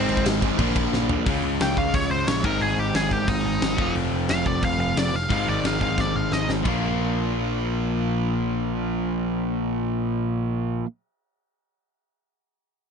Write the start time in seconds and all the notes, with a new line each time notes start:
Already playing: G#2 D#3 G#3 C4 D#4 C5
0.09 G#1, crash
0.17 kick
0.26 G#1, snare, crash
0.41 G#2 D#3 G#3, kick, crash
0.58 A#1 A#2 D3 F3 A#3 D4, kick, crash
0.76 A#1, kick, crash
0.93 A#1, snare
1.09 F3 A#3, floor tom
1.13 A#2
1.25 C#2 C#3 G#3 C#4 F4, kick, open hi-hat
1.43 C#2
1.60 C#2 G5, snare, open hi-hat
1.77 C#2 F5, kick
1.94 C#2 C#5, kick, open hi-hat
2.11 C#2 C5
2.27 A#1 C#5, snare, open hi-hat
2.43 G#1 G#2 D#3 G#3 C4 D#4 A#4, kick
2.61 G#1 G#4, open hi-hat
2.77 G#1 G4
2.94 G#1 G#4, snare, open hi-hat
3.11 G#1 G4, kick
3.28 G#1 D#4, kick, open hi-hat
3.45 G#1
3.62 G#1, snare, open hi-hat
3.77 F1 F2 C3 F3 A3 C4 F4, kick
3.81 F3
3.95 F1, open hi-hat
4.12 F1
4.29 F1 F5, snare, open hi-hat
4.46 F1 D5, kick
4.63 F1 F5, kick, open hi-hat
4.79 F1 F5
4.96 F1 D5, snare, open hi-hat
5.13 F1 F5
5.29 G#1 G#2 D#3 G#3 C4 D#4 F5, kick, open hi-hat
5.48 G#1 D5
5.64 G#1 F5, snare, open hi-hat
5.81 G#1 F5, kick
5.98 G#1 D5, kick, snare
6.15 G#1 F5
6.31 G#1 D#5, snare
6.48 G#1, snare
6.63 A#1 A#2 F3 A#3 D4, kick, crash
6.67 F4